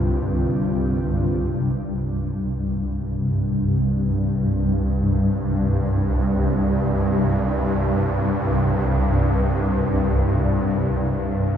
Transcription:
Already playing: C2 G2 D3 G3 C4 F4 G4 G5
1.41 C2 G2

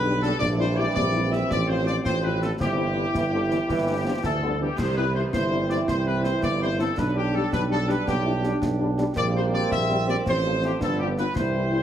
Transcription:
Already playing: B1 D3 G3 D4 B4
0.06 G3 D4 G4
0.21 G3 D4 G4 A4, snare
0.38 A#1 E3 G3 D4 D5, concert bass drum, snare, crash
0.58 G3 C4 E4 C5
0.76 G3 C4 E4 D5
0.94 A#1 C4 D5, concert bass drum, snare
1.12 G3 C4 E4
1.31 G3 C4 E4 E5, snare
1.50 A1 F3 C4 D5, concert bass drum, snare
1.67 F3 C4 F4 C5
1.85 F3 C4 F4 D5, snare
2.04 A1 F3 C4 F4 C5, concert bass drum, snare
2.23 F3 C4 F4 B4
2.40 F3 C4 F4 A4, snare
2.60 G1 E3 C4 E4 G4, concert bass drum, snare
2.76 G3 C4 E4
2.95 G3 C4 E4
3.15 G1 E3, concert bass drum, snare
3.31 D3 G3 C4 E4
3.48 E3 G3 C4 E4, snare
3.68 G1 E3, concert bass drum, snare
3.87 G3 B3 D4
4.04 F3 G3 B3 D4
4.22 D2 E3 A4, concert bass drum, snare
4.41 D3 G3 B3 D4
4.60 E3 G3 B3 D4 G4
4.77 C2 E3 C4 G4 C5, concert bass drum, snare, crash
4.96 G3 C4 E4 B4
5.14 G3 C4 E4 C5
5.33 G1 E4 C5, concert bass drum, snare
5.51 G3 C4 E4
5.70 G3 C4 E4 D5, snare
5.88 C2 C5, concert bass drum, snare
6.06 G3 C4 E4 B4
6.23 G3 C4 E4 C5, snare
6.42 G1 D5, concert bass drum, snare
6.61 G3 C4 E4 C5
6.79 G3 C4 E4 A4, snare
6.96 B1 G3 D4 B4, concert bass drum, snare
7.16 G3 D4 G4
7.34 G3 D4 G4 A4
7.52 B1 B4, concert bass drum, snare
7.70 G3 D4 G4 A4
7.88 G3 D4 G4 B4, snare
8.06 B1 B3 G4, concert bass drum, snare
8.24 G3 D4 E4 G4
8.43 G3 D4 G4, snare
8.62 B1, concert bass drum, snare
8.80 G3 D4 G4
8.98 G3 D4 G4, snare
9.16 A#1 G3 A#3 C4 D5, concert bass drum, snare, crash
9.34 G3 C4 G4 C5
9.53 G3 C4 G4 D5
9.71 A#1 E5, concert bass drum, snare
9.90 G3 C4 G4
10.07 G3 C4 G4 D5, snare
10.24 A1 F3 C4 C5, concert bass drum, snare
10.45 A3 C4 F4
10.62 A3 C4 F4 G4, snare
10.79 G1 B3 D4 A4, concert bass drum, snare
10.99 B3 D4 F4 G4
11.17 B3 D4 F4 B4, snare
11.34 C2 E3 C4 E4 C5, concert bass drum, snare
11.54 G3 C4 E4
11.73 G3 C4 E4

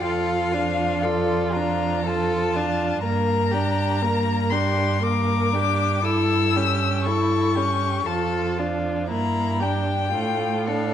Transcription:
0.02 F2 F4 A4 F5
0.52 D4 F4
1.02 F4 A4 D5
1.54 D4 F4 A#5
2.06 F4 A4 A5
2.54 D4 F4
3.03 G2 A#3 A#4 A#5
3.51 D4 G4
4.02 A#3 A#4
4.50 D4 G4 C6
5.03 A#3 A#4 D6
5.53 D4 G4
6.04 E4 A4 E6
6.56 C#4 G4
7.06 E4 A4 C#6
7.56 C#4 G4
8.06 F2 F4 A4 A5
8.58 D4 F4
9.09 G2 A#3 E4 A#5
9.60 D4 G4 G5
10.12 A2 A3 F4
10.67 D4 A4 F5

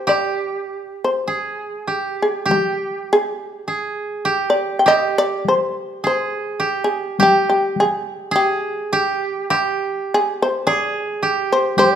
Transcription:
0.07 G4 D5, taiko rim
1.04 C5
1.28 G#4
1.88 G4
2.22 G#4
2.46 G4, taiko high
2.51 G4
3.13 G#4
3.68 G#4
4.25 G4
4.50 D5
4.79 G5
4.86 G4 D#5, taiko rim
5.18 D5
5.45 C5, taiko high
6.04 G#4 C5
6.60 G4
6.84 G#4
7.19 G4, taiko high
7.49 G4
7.76 taiko high
7.80 G#4
8.31 G#4
8.36 G4
8.93 G4
9.50 G4, taiko rim
10.14 G#4
10.42 C5
10.67 G#4 D5
11.23 G4
11.52 C5
11.77 G4 D5, taiko high

